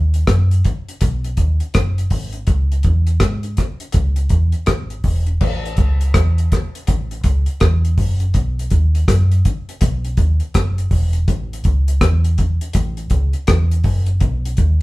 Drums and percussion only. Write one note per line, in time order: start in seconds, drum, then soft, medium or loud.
0.14 closed hi-hat medium
0.27 kick loud
0.27 cross-stick loud
0.27 closed hi-hat medium
0.51 closed hi-hat soft
0.65 kick medium
0.65 closed hi-hat medium
0.89 closed hi-hat medium
1.01 kick loud
1.01 closed hi-hat medium
1.24 closed hi-hat medium
1.37 kick medium
1.37 closed hi-hat medium
1.60 closed hi-hat soft
1.74 kick loud
1.74 cross-stick loud
1.74 closed hi-hat medium
1.98 closed hi-hat medium
2.10 kick medium
2.10 open hi-hat medium
2.33 closed hi-hat medium
2.47 kick medium
2.47 closed hi-hat medium
2.72 closed hi-hat medium
2.83 kick medium
2.83 closed hi-hat medium
3.07 closed hi-hat medium
3.20 kick loud
3.20 cross-stick loud
3.20 closed hi-hat medium
3.43 closed hi-hat soft
3.57 kick medium
3.57 cross-stick medium
3.57 closed hi-hat medium
3.80 closed hi-hat medium
3.92 kick loud
3.92 closed hi-hat medium
4.16 closed hi-hat medium
4.29 kick medium
4.29 closed hi-hat medium
4.52 closed hi-hat soft
4.66 kick loud
4.66 cross-stick loud
4.66 closed hi-hat medium
4.90 closed hi-hat soft
5.04 kick medium
5.04 open hi-hat medium
5.27 closed hi-hat medium
5.41 kick medium
5.41 crash medium
5.66 closed hi-hat medium
5.77 kick loud
5.77 closed hi-hat medium
6.01 closed hi-hat medium
6.14 kick loud
6.14 cross-stick loud
6.14 closed hi-hat loud
6.38 closed hi-hat medium
6.52 kick medium
6.52 cross-stick medium
6.52 closed hi-hat medium
6.75 closed hi-hat medium
6.87 kick loud
6.87 closed hi-hat loud
7.11 closed hi-hat soft
7.24 kick medium
7.24 closed hi-hat medium
7.46 closed hi-hat soft
7.60 kick loud
7.60 cross-stick loud
7.60 closed hi-hat medium
7.85 closed hi-hat soft
7.98 kick medium
7.98 open hi-hat medium
8.20 closed hi-hat medium
8.34 kick medium
8.34 closed hi-hat medium
8.59 closed hi-hat medium
8.70 kick medium
8.70 closed hi-hat medium
8.95 closed hi-hat medium
9.08 kick loud
9.08 cross-stick loud
9.08 closed hi-hat loud
9.32 closed hi-hat medium
9.45 kick medium
9.45 closed hi-hat medium
9.69 closed hi-hat medium
9.81 kick loud
9.81 closed hi-hat loud
10.05 closed hi-hat medium
10.17 kick medium
10.17 closed hi-hat medium
10.40 closed hi-hat soft
10.54 kick loud
10.54 cross-stick loud
10.54 closed hi-hat medium
10.78 closed hi-hat medium
10.91 kick medium
10.91 open hi-hat medium
11.13 closed hi-hat medium
11.28 kick loud
11.28 closed hi-hat medium
11.53 closed hi-hat medium
11.64 kick medium
11.64 closed hi-hat medium
11.88 closed hi-hat medium
12.01 kick loud
12.01 cross-stick loud
12.01 closed hi-hat medium
12.24 closed hi-hat medium
12.38 kick loud
12.38 closed hi-hat medium
12.61 closed hi-hat medium
12.73 kick loud
12.73 closed hi-hat medium
12.97 closed hi-hat soft
13.10 kick medium
13.10 closed hi-hat medium
13.33 closed hi-hat soft
13.47 kick loud
13.47 cross-stick loud
13.47 closed hi-hat medium
13.71 closed hi-hat soft
13.84 kick medium
13.84 open hi-hat medium
14.06 closed hi-hat medium
14.20 kick medium
14.20 closed hi-hat medium
14.45 closed hi-hat medium
14.57 kick medium
14.57 closed hi-hat medium